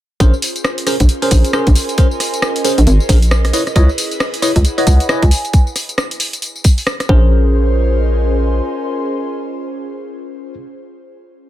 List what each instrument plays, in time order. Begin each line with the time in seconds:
0.20 fm bass A#1, tine electric piano C#4 G#4 A#4 C5, analog synth pad C#4 F4 G#4 C5, ambient pad A#4, kick, closed hi-hat, tambourine
0.34 tambourine
0.42 open hi-hat, tambourine
0.56 closed hi-hat, tambourine
0.60 ambient pad D#5
0.64 cross-stick, tambourine
0.78 ambient pad G#5, closed hi-hat, tambourine
0.87 tine electric piano C#4 G#4 A#4 C5, ambient pad C6, cross-stick, open hi-hat, tambourine
1.00 fm bass A#1, kick, closed hi-hat, tambourine
1.09 closed hi-hat, tambourine
1.22 tine electric piano C#4 G#4 A#4 C5, open hi-hat, tambourine
1.31 fm bass A#1, kick, open hi-hat, tambourine
1.45 closed hi-hat, tambourine
1.53 tine electric piano C#4 G#4 A#4 C5, cross-stick, tambourine
1.67 fm bass A#1, kick, closed hi-hat, tambourine
1.76 open hi-hat, tambourine
1.89 closed hi-hat, tambourine
1.98 tine electric piano C#4 G#4 A#4 C5, kick, closed hi-hat, tambourine
2.11 tambourine
2.20 cross-stick, open hi-hat, tambourine
2.34 closed hi-hat, tambourine
2.42 cross-stick, tambourine
2.56 closed hi-hat, tambourine
2.65 tine electric piano C#4 G#4 A#4 C5, open hi-hat, tambourine
2.78 fm bass A#1, closed hi-hat, tambourine
2.87 fm bass G#1, closed hi-hat, tambourine
3.00 tambourine
3.09 fm bass A#1, tine electric piano C#4 G#4 A#4 C5, kick, open hi-hat, tambourine
3.22 closed hi-hat, tambourine
3.31 cross-stick, tambourine
3.45 cross-stick, closed hi-hat, tambourine
3.53 tine electric piano E4 B4 C#5 D#5, analog synth pad E4 B4 D#5, ambient pad G#4, open hi-hat, tambourine
3.67 cross-stick, closed hi-hat, tambourine
3.76 fm bass C#2, tine electric piano E4 B4 C#5 D#5, kick, closed hi-hat, tambourine
3.89 tambourine
3.97 ambient pad C#5, open hi-hat, tambourine
4.11 closed hi-hat, tambourine
4.20 cross-stick, tambourine
4.34 closed hi-hat, tambourine
4.42 tine electric piano E4 B4 C#5 D#5, ambient pad F#5 B5, cross-stick, open hi-hat, tambourine
4.56 fm bass C#2, kick, closed hi-hat, tambourine
4.65 closed hi-hat, tambourine
4.78 tine electric piano E4 B4 C#5 D#5, vibraphone F#5, open hi-hat, tambourine
4.87 fm bass C#2, vibraphone F#5, kick, open hi-hat, tambourine
5.00 closed hi-hat, tambourine
5.09 tine electric piano E4 B4 C#5 D#5, vibraphone G#5, cross-stick, tambourine
5.22 fm bass C#2, kick, closed hi-hat, tambourine
5.31 vibraphone G#5, open hi-hat, tambourine
5.45 vibraphone G#5, closed hi-hat, tambourine
5.53 kick, closed hi-hat, tambourine
5.67 tambourine
5.76 cross-stick, open hi-hat, tambourine
5.89 closed hi-hat, tambourine
5.98 cross-stick, tambourine
6.11 closed hi-hat, tambourine
6.20 open hi-hat, tambourine
6.33 closed hi-hat, tambourine
6.42 closed hi-hat, tambourine
6.56 tambourine
6.64 kick, open hi-hat, tambourine
6.78 open hi-hat, tambourine
6.87 cross-stick, tambourine
7.00 cross-stick, closed hi-hat, tambourine
7.09 fm bass A#1, analog synth pad C#4 F4 G#4 C5, tine electric piano C#4 G#4 A#4 C5, ambient pad A#4, kick
7.17 ambient pad D#5
7.46 ambient pad G#5
7.52 ambient pad C6